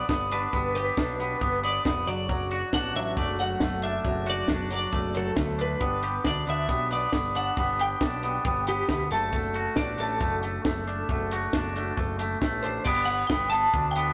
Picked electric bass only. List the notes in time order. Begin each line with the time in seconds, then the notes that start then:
0.09 G1
0.53 G1
0.97 B1
1.41 G1
1.85 F1
2.07 F#1
2.73 A1
2.95 A1
3.17 F#1
3.61 F#1
4.04 F#1
4.48 F#1
4.93 F#1
5.37 D2
5.81 G1
6.25 D2
6.47 D2
6.68 B1
7.12 G1
7.57 G1
8.01 B1
8.45 G1
8.89 D2
9.11 F#1
9.76 A1
9.99 A1
10.20 F#1
10.65 F#1
11.09 F#1
11.53 F#1
11.97 F#1
12.41 A1
12.86 G1
13.30 G1
13.74 D2